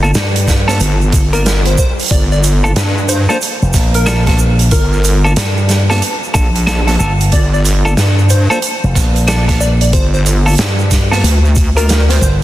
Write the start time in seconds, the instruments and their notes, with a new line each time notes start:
Already playing: wobble bass G1
0.03 clean electric guitar A#3 D4 F4 A4, shaker
0.14 slap bass G2, snare, closed hi-hat, shaker
0.36 closed hi-hat, shaker
0.48 kick, snare, closed hi-hat, shaker
0.68 clean electric guitar A#3 D4 F4 A4, snare, shaker
0.80 wobble bass G1, closed hi-hat, shaker
1.02 shaker
1.12 kick, closed hi-hat, shaker
1.33 clean electric guitar A#3 D4 F4 A#4, digital synth lead A#4, closed hi-hat, shaker
1.45 digital synth lead A#4, snare, closed hi-hat, shaker
1.66 digital synth lead C5, closed hi-hat, shaker
1.78 digital synth lead C5, kick, shaker
1.99 closed hi-hat, shaker
2.03 closed hi-hat
2.04 closed hi-hat
2.06 closed hi-hat
2.08 closed hi-hat
2.09 wobble bass G1, digital synth lead D5, kick, closed hi-hat, shaker
2.12 closed hi-hat
2.32 digital synth lead D5, shaker
2.44 closed hi-hat, shaker
2.64 clean electric guitar A#3 D4 F4 A4, shaker
2.76 wobble bass G2, snare, closed hi-hat, shaker
2.98 shaker
3.09 digital synth lead C5, closed hi-hat, shaker
3.29 clean electric guitar A#3 D4 F4 A4, digital synth lead C5, shaker
3.42 closed hi-hat, shaker
3.62 slap bass F1, shaker
3.73 slap bass A#1, kick, snare, closed hi-hat, shaker
3.94 digital synth lead A#4, closed hi-hat, shaker
4.06 clean electric guitar A#3 D4 F4 A4, snare, closed hi-hat, shaker
4.27 clean electric guitar A#3 D4 F4 A4, kick, snare, closed hi-hat, shaker
4.39 shaker
4.59 closed hi-hat, shaker
4.71 wobble bass G1, digital synth lead A#4, kick, closed hi-hat, shaker
4.93 shaker
5.04 closed hi-hat, shaker
5.24 clean electric guitar A#3 D4 F4 A4, shaker
5.36 slap bass G2, snare, closed hi-hat, shaker
5.57 shaker
5.69 snare, closed hi-hat, shaker
5.90 clean electric guitar A#3 D4 F4 A4, snare, shaker
6.02 closed hi-hat, shaker
6.24 shaker
6.34 wobble bass A#1, clean electric guitar A#3 D4 F4 A4, kick, closed hi-hat, shaker
6.55 closed hi-hat, shaker
6.67 clean electric guitar A#3 D4 F4 A4, snare, closed hi-hat, shaker
6.87 clean electric guitar A#3 D4 F4 A4, snare, closed hi-hat, shaker
6.99 slap bass G1, clean electric guitar A#3 D4 F4 A4, shaker
7.20 closed hi-hat, shaker
7.32 wobble bass G1, digital synth lead D5, kick, closed hi-hat, shaker
7.54 digital synth lead D5, shaker
7.65 closed hi-hat, shaker
7.85 clean electric guitar A#3 D4 F4 A4, shaker
7.97 wobble bass G2, snare, closed hi-hat, shaker
8.19 shaker
8.29 digital synth lead C5, closed hi-hat, shaker
8.50 clean electric guitar A#3 D4 F4 A4, digital synth lead C5, shaker
8.62 closed hi-hat, shaker
8.84 slap bass F1, shaker
8.95 slap bass A#1, kick, snare, closed hi-hat, shaker
9.16 closed hi-hat, shaker
9.28 clean electric guitar A#3 D4 F4 A4, snare, closed hi-hat, shaker
9.48 clean electric guitar A#3 D4 F4 A4, kick, snare, closed hi-hat, shaker
9.60 digital synth lead D5, shaker
9.81 digital synth lead D5, closed hi-hat, shaker
9.93 wobble bass G1, digital synth lead C5, kick, closed hi-hat, shaker
10.14 digital synth lead C5, shaker
10.26 closed hi-hat, shaker
10.46 clean electric guitar A#3 D4 F4 A4, closed hi-hat, shaker
10.48 closed hi-hat
10.50 closed hi-hat
10.52 closed hi-hat
10.53 closed hi-hat
10.55 closed hi-hat
10.57 slap bass G2, snare, closed hi-hat, shaker
10.79 shaker
10.91 kick, snare, closed hi-hat, shaker
11.11 clean electric guitar A#3 D4 F4 A4, snare, shaker
11.24 wobble bass D2, closed hi-hat, shaker
11.45 shaker
11.56 kick, closed hi-hat, shaker
11.77 clean electric guitar A#3 D4 F4 A#4, digital synth lead A#4, closed hi-hat, shaker
11.89 digital synth lead A#4, snare, closed hi-hat, shaker
12.09 digital synth lead C5, snare, closed hi-hat, shaker
12.21 slap bass G1, digital synth lead C5, kick, shaker